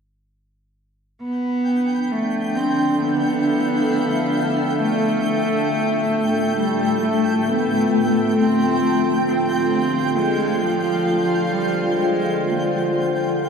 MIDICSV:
0, 0, Header, 1, 5, 480
1, 0, Start_track
1, 0, Tempo, 895522
1, 645, Time_signature, 4, 2, 24, 8
1, 7231, End_track
2, 0, Start_track
2, 0, Title_t, "Synth texture"
2, 0, Program_c, 0, 99
2, 636, Note_on_c, 0, 91, 71
2, 647, Note_on_c, 0, 79, 75
2, 7231, Note_off_c, 0, 79, 0
2, 7231, Note_off_c, 0, 91, 0
2, 7231, End_track
3, 0, Start_track
3, 0, Title_t, "Ambient pad"
3, 0, Program_c, 1, 92
3, 648, Note_on_c, 1, 62, 76
3, 786, Note_on_c, 1, 69, 82
3, 1106, Note_on_c, 1, 76, 62
3, 1358, Note_on_c, 1, 77, 71
3, 2565, Note_on_c, 1, 57, 78
3, 2567, Note_off_c, 1, 77, 0
3, 2970, Note_on_c, 1, 79, 76
3, 3333, Note_off_c, 1, 76, 0
3, 3334, Note_off_c, 1, 62, 0
3, 4485, Note_off_c, 1, 57, 0
3, 4489, Note_off_c, 1, 69, 0
3, 4492, Note_on_c, 1, 65, 83
3, 4994, Note_on_c, 1, 77, 74
3, 6499, Note_on_c, 1, 70, 93
3, 6853, Note_on_c, 1, 68, 66
3, 7122, Note_off_c, 1, 79, 0
3, 7172, Note_off_c, 1, 77, 0
3, 7231, Note_off_c, 1, 65, 0
3, 7231, Note_off_c, 1, 68, 0
3, 7231, Note_off_c, 1, 70, 0
3, 7231, End_track
4, 0, Start_track
4, 0, Title_t, "Cello"
4, 0, Program_c, 2, 42
4, 655, Note_on_c, 2, 59, 89
4, 1131, Note_on_c, 2, 57, 76
4, 1139, Note_off_c, 2, 59, 0
4, 1371, Note_on_c, 2, 60, 89
4, 1379, Note_off_c, 2, 57, 0
4, 1614, Note_on_c, 2, 59, 95
4, 1622, Note_off_c, 2, 60, 0
4, 2565, Note_on_c, 2, 57, 96
4, 2573, Note_off_c, 2, 59, 0
4, 3521, Note_off_c, 2, 57, 0
4, 3524, Note_on_c, 2, 55, 80
4, 3769, Note_on_c, 2, 57, 78
4, 3777, Note_off_c, 2, 55, 0
4, 4015, Note_on_c, 2, 59, 79
4, 4023, Note_off_c, 2, 57, 0
4, 4490, Note_off_c, 2, 59, 0
4, 4493, Note_on_c, 2, 60, 95
4, 4948, Note_off_c, 2, 60, 0
4, 4973, Note_on_c, 2, 60, 80
4, 5452, Note_on_c, 2, 56, 85
4, 5460, Note_off_c, 2, 60, 0
4, 5695, Note_on_c, 2, 53, 77
4, 5703, Note_off_c, 2, 56, 0
4, 6172, Note_on_c, 2, 55, 80
4, 6180, Note_off_c, 2, 53, 0
4, 6408, Note_off_c, 2, 55, 0
4, 6414, Note_on_c, 2, 56, 78
4, 6698, Note_on_c, 2, 58, 56
4, 6706, Note_off_c, 2, 56, 0
4, 6744, Note_on_c, 2, 56, 52
4, 6752, Note_off_c, 2, 58, 0
4, 6781, Note_on_c, 2, 55, 61
4, 6789, Note_off_c, 2, 56, 0
4, 6838, Note_on_c, 2, 56, 62
4, 6846, Note_off_c, 2, 55, 0
4, 6886, Note_off_c, 2, 56, 0
4, 7231, End_track
5, 0, Start_track
5, 0, Title_t, "Synth drone"
5, 0, Program_c, 3, 95
5, 650, Note_on_c, 3, 50, 58
5, 653, Note_on_c, 3, 53, 71
5, 7231, Note_off_c, 3, 50, 0
5, 7231, Note_off_c, 3, 53, 0
5, 7231, End_track
0, 0, End_of_file